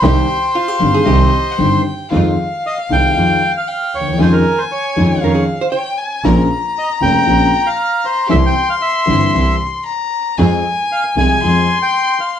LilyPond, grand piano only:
\new Staff \with { instrumentName = "Grand piano" } { \clef bass \time 4/4 \key c \minor \tempo 4 = 116 <c, c ees g c' g'>8 r4 <g,, g, ees g c' g'>8 <c, c ees g c' g'>8 r8 <g,, g, ees g c' g'>8 r8 | \key f \minor <f, ees f aes c' f'>8 r4 <c, c ees aes c' f'>8 <f, ees f aes c' f'>8 r4 r32 d,32 ees,32 e,32 | <f, ees f aes des' f'>8 r4 <f, ees f aes des' f'>8 <f, ees f aes des' f'>8 r4. | <bes,, bes, des bes c' f'>8 r4 <f,, f, des bes c' f'>8 <bes,, bes, des bes c' f'>8 r4. |
<c, c e g c' g'>8 r4 <g,, g, e g c' g'>8 <c, c e g c' g'>8 r4. | <f, f aes c' aes'>8 r4 <c, c f aes c' aes'>8 <f, f aes c' aes'>8 r4. | }